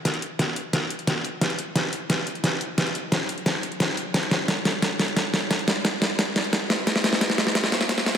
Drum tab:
HH |xxx-x-o-x-xxx-o-|xxx-x-o-x-xxx-o-|xxx-x-oxx-xxx-o-|xxx-x-o-x-xxx-o-|
SD |o---o---o---o---|o---o---o---o---|o---o---o---o---|o-o-o-o-o-o-o-o-|
BD |o---o---o---o---|o---o---o---o---|o---o---o---o---|o---o---o---o---|

HH |xxx-x-o-x-xxx-o-|xxx-x-o-x-xxx-o-|
SD |o-o-o-o-o-o-o-o-|ooooooooooooooo-|
BD |o---o---o---o---|o---o---o---o---|